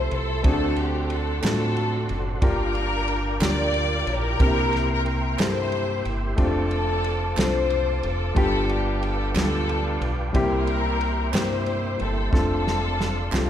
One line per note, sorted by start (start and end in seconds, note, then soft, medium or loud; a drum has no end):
0.00 0.47 F3 medium
0.00 0.43 A3 medium
0.00 0.44 C4 medium
0.00 0.42 E4 medium
0.00 0.47 E4 medium
0.00 0.46 G4 medium
0.00 0.13 A4 medium
0.00 0.47 A4 medium
0.00 2.38 A4 medium
0.00 0.13 C5 loud
0.00 0.43 C5 medium
0.00 0.42 E5 medium
0.00 2.38 C6 medium
0.11 0.42 C2 loud
0.11 0.45 A4 loud
0.11 ride soft
0.43 1.39 D2 medium
0.43 1.39 D3 medium
0.43 1.06 A3 medium
0.43 1.07 C4 medium
0.43 1.40 C4 medium
0.43 1.07 D4 medium
0.43 1.07 F#4 medium
0.43 1.40 F#4 medium
0.43 0.52 G#4 medium
0.43 0.76 A4 loud
0.43 2.40 D5 medium
0.43 2.40 F#5 soft
0.43 kick loud
0.43 ride medium
0.52 1.11 A4 medium
0.76 1.11 G4 medium
0.76 ride soft
1.10 1.44 A4 medium
1.10 ride soft
1.42 2.05 A2 medium
1.42 2.05 A3 medium
1.42 2.05 C4 medium
1.42 2.39 C4 medium
1.42 2.06 D4 medium
1.42 1.50 F4 soft
1.42 2.39 F#4 medium
1.42 2.06 A4 medium
1.42 2.15 A4 medium
1.42 snare loud
1.42 clap medium
1.42 ride medium
1.50 2.09 F#4 medium
1.77 ride soft
2.09 2.40 F#1 medium
2.09 ride soft
2.41 3.37 G1 medium
2.41 3.37 G2 medium
2.41 3.04 A#3 medium
2.41 3.04 D4 medium
2.41 3.38 D4 medium
2.41 3.04 F4 medium
2.41 3.39 F4 medium
2.41 3.05 G4 medium
2.41 4.38 A#4 medium
2.41 3.05 A#4 medium
2.41 4.38 D5 medium
2.41 6.34 G5 medium
2.41 4.38 D6 medium
2.41 kick loud
2.41 ride medium
2.46 3.39 A#4 loud
2.75 ride soft
3.08 ride soft
3.40 4.03 D2 medium
3.40 4.03 A#3 medium
3.40 4.03 D4 medium
3.40 4.03 F4 medium
3.40 4.37 F4 medium
3.40 4.04 G4 medium
3.40 4.04 A#4 medium
3.40 4.09 A#4 medium
3.40 snare loud
3.40 clap loud
3.40 ride medium
3.44 4.09 D5 loud
3.74 ride soft
4.07 4.37 A#1 loud
4.07 5.03 E4 medium
4.07 5.03 G4 medium
4.07 4.91 A#4 loud
4.07 ride soft
4.39 5.35 C2 medium
4.39 5.35 C3 medium
4.39 5.02 A#3 medium
4.39 6.36 A#3 medium
4.39 5.02 C4 medium
4.39 4.47 D4 medium
4.39 5.03 G4 medium
4.39 5.03 A#4 medium
4.39 6.36 C6 medium
4.39 kick loud
4.39 ride medium
4.47 5.06 E4 medium
4.73 snare soft
4.73 ride soft
4.93 5.07 A#4 loud
5.06 5.38 A#4 medium
5.06 ride soft
5.38 6.01 G2 medium
5.38 6.01 A#3 medium
5.38 6.01 C4 medium
5.38 6.02 E4 medium
5.38 6.35 E4 medium
5.38 6.35 G4 medium
5.38 6.02 G4 medium
5.38 6.02 A4 medium
5.38 6.14 C5 loud
5.38 snare loud
5.38 clap medium
5.38 ride medium
5.72 ride soft
6.05 6.36 G1 medium
6.05 ride soft
6.36 7.33 F1 medium
6.36 7.00 A3 medium
6.36 7.00 C4 medium
6.36 7.34 C4 medium
6.36 7.00 D4 medium
6.36 7.34 D4 medium
6.36 7.01 F4 medium
6.36 6.45 G4 medium
6.36 8.35 C5 medium
6.36 8.35 F5 medium
6.36 8.35 A5 medium
6.36 10.31 D6 medium
6.36 kick loud
6.36 ride medium
6.41 7.35 A4 medium
6.45 7.04 A4 medium
6.71 ride soft
7.04 ride soft
7.36 7.99 C2 medium
7.36 7.99 A3 medium
7.36 7.99 C4 medium
7.36 8.00 D4 medium
7.36 8.00 F4 medium
7.36 8.00 A4 medium
7.36 8.07 A4 medium
7.36 snare loud
7.36 clap medium
7.36 ride medium
7.41 8.05 C5 loud
7.70 ride soft
8.03 8.34 F1 medium
8.03 ride soft
8.08 8.39 A4 medium
8.35 9.31 G1 medium
8.35 9.31 G2 medium
8.35 8.98 G3 medium
8.35 8.98 B3 medium
8.35 8.99 D4 medium
8.35 8.99 F4 medium
8.35 8.99 G4 medium
8.35 10.33 B4 medium
8.35 10.34 F5 medium
8.35 12.30 G5 medium
8.35 kick loud
8.35 ride medium
8.39 9.33 D4 medium
8.39 9.33 F4 medium
8.39 8.69 A4 loud
8.69 ride soft
8.74 9.02 G4 medium
9.03 9.37 A4 medium
9.03 ride soft
9.34 9.97 D2 medium
9.34 9.97 G3 medium
9.34 9.97 B3 medium
9.34 9.98 D4 medium
9.34 10.31 D4 medium
9.34 9.98 F4 medium
9.34 10.32 F4 medium
9.34 9.98 A4 medium
9.34 10.07 A4 medium
9.34 snare loud
9.34 clap medium
9.34 ride medium
9.69 ride soft
10.01 10.32 B1 medium
10.01 ride soft
10.33 11.30 C2 medium
10.33 11.30 C3 medium
10.33 10.96 G3 medium
10.33 10.96 A#3 medium
10.33 12.31 A#3 medium
10.33 10.97 C4 medium
10.33 10.97 E4 medium
10.33 10.97 G4 medium
10.33 11.31 G4 medium
10.33 12.31 E5 soft
10.33 12.31 C6 medium
10.33 kick loud
10.33 ride medium
10.37 11.31 E4 medium
10.37 11.31 A#4 loud
10.67 ride soft
11.01 ride soft
11.33 11.96 G2 medium
11.33 11.96 G3 medium
11.33 11.96 A#3 medium
11.33 11.96 C4 medium
11.33 11.96 E4 medium
11.33 12.30 E4 medium
11.33 11.97 G4 medium
11.33 12.30 G4 medium
11.33 12.01 C5 medium
11.33 snare loud
11.33 clap medium
11.33 ride medium
11.66 ride soft
11.99 12.31 G1 medium
11.99 12.34 A4 medium
11.99 ride soft
12.31 13.28 F1 medium
12.31 12.94 A3 medium
12.31 12.95 C4 medium
12.31 13.29 C4 medium
12.31 12.95 D4 medium
12.31 13.28 D4 medium
12.31 12.95 F4 medium
12.31 13.50 A4 medium
12.31 12.96 A4 medium
12.31 13.29 A4 loud
12.31 13.50 D5 medium
12.31 13.50 F5 soft
12.31 13.50 C6 medium
12.31 kick loud
12.31 snare medium
12.67 snare medium
13.01 snare medium
13.31 13.50 C2 medium
13.31 13.50 A3 medium
13.31 13.50 C4 medium
13.31 13.50 D4 medium
13.31 13.50 F4 medium
13.31 13.39 G4 medium
13.31 snare medium
13.31 clap medium
13.40 13.50 A4 medium